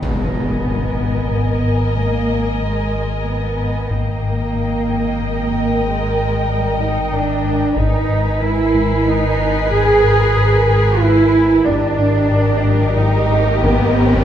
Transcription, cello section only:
0.03 B3
1.98 A#3
2.61 G#3
3.26 B3
3.89 A#3
5.84 G#3
6.48 G3
6.80 D#4
7.13 D4
7.77 D#4
8.41 E4
9.05 D#4
9.71 G#4
10.68 G#4
11.00 E4
11.65 D4
12.96 D#4
13.64 B3

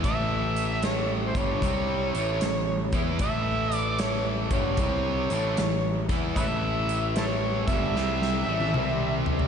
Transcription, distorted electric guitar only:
0.04 A2 E3 A3
1.36 G2 D3 G3
1.63 C3 G3 C4
2.14 A2 E3 A3
2.42 A2 E3
2.94 E3 B3 E4
3.21 A2 E3 A3
4.52 G2 D3 G3
4.79 C3 G3 C4
5.32 A2 E3 A3
5.58 A2 E3
6.09 E3 B3 E4
6.36 A2 E3 A3
7.68 G2 D3 G3
7.95 C3 G3 C4
8.48 A2 E3 A3
8.74 C3 G3 C4

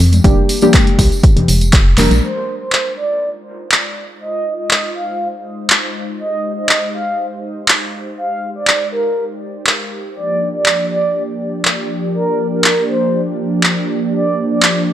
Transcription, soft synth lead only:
2.23 C5
2.61 C5
2.97 D5
4.21 D#5
4.59 D#5
4.95 F5
6.19 D#5
6.57 D#5
6.94 F5
8.18 F5
8.56 D5
8.92 A#4
10.16 D5
10.54 D5
10.90 D5
12.14 A#4
12.52 A#4
12.89 C5
14.13 D5
14.51 D5
14.87 D5

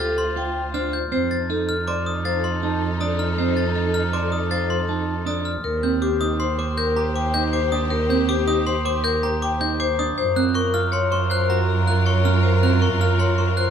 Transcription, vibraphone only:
0.00 A4
0.37 G5
0.74 C5
1.12 C5
1.50 A4
1.88 D5
2.25 C5
2.62 A5
3.01 D5
3.38 C5
3.75 A4
4.14 D5
4.51 C5
4.88 A5
5.27 D5
5.64 A#4
6.02 G4
6.40 C5
6.78 A#4
7.16 G5
7.53 C5
7.90 A#4
8.29 G4
8.67 C5
9.04 A#4
9.43 G5
9.80 C5
10.18 C5
10.54 A#4
10.92 C#5
11.30 C5
11.68 A#5
12.06 C#5
12.43 C5
12.81 A#4
13.19 C#5
13.57 C5

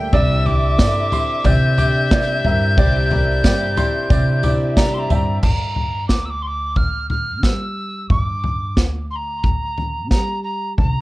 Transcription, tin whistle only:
0.12 E6
0.46 D6
1.46 G6
4.77 A#5
4.94 C6
4.98 A#5
5.11 A5
5.15 A#5
5.41 A#5
6.08 D6
6.25 E6
6.30 D6
6.42 C6
6.47 D6
6.76 F6
7.10 F6
7.43 E6
8.09 C#6
8.21 D6
9.11 C6
9.15 A#5
10.11 A#5
10.43 A#5
10.77 A5
10.88 A#5

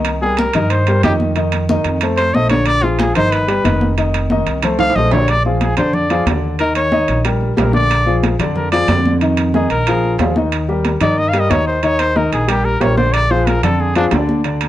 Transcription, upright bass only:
Already playing: C2
0.54 G2
1.03 F2
1.84 F2
2.33 A#1
3.15 G1
3.64 F1
4.46 C2
4.95 A#1
5.77 F2
6.26 D#2
7.08 A#1
7.57 A#1
8.39 F2
8.88 F2
9.70 A#1
10.18 D#2
11.01 G2
11.50 D#2
12.32 A#1
12.81 A#1
13.63 F2
14.12 D2

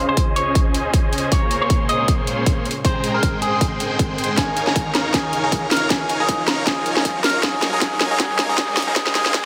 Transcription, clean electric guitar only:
0.09 C5
0.36 C#5
1.32 C#5
1.61 C#5
1.89 D#5
2.85 C5
3.14 A#4
3.42 G#4
4.38 G#4
4.67 G#4
4.95 A#4
5.14 G#4
5.44 G#4
5.71 A#4
5.90 G#4
6.20 G#4
6.48 A#4
6.67 G#4
6.97 G#4
7.24 A#4
7.43 G#4
7.73 G#4
7.81 G#4
8.11 G#4
8.20 G#4
8.49 G#4
8.58 G#4
8.88 G#4
8.96 G#4
9.15 G#4
9.34 G#4

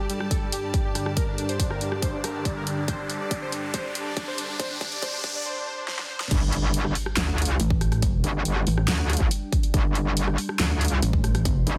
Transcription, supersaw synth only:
0.10 G3
0.21 G3
0.31 A4
0.42 G3
0.53 G4
0.63 G3
0.74 G3
0.85 G4
0.95 G3
1.06 G3
1.17 A#4
1.28 D4
1.38 D4
1.49 C5
1.60 D4
1.71 A#4
1.81 D4
1.92 D4
2.03 C5
2.13 D4
2.24 A#4
2.35 D4
2.46 D4
2.56 A#4
2.67 D4
2.78 D4
2.88 C5
2.99 D4
3.10 D4
3.20 D5
3.31 D4
3.42 C5
3.52 D4
3.63 D4
3.74 C5
3.85 D4
3.95 D4
4.06 D5
4.17 D4
4.28 C5
4.38 D4
4.49 D4
4.59 C5
4.70 D4
4.81 D4
4.92 D5
5.02 C5
5.13 D4
5.24 D4
5.35 D5
5.45 C5
5.56 D4
5.67 C5
5.78 D4
5.88 C5
5.99 D4
6.10 C5
6.21 D4

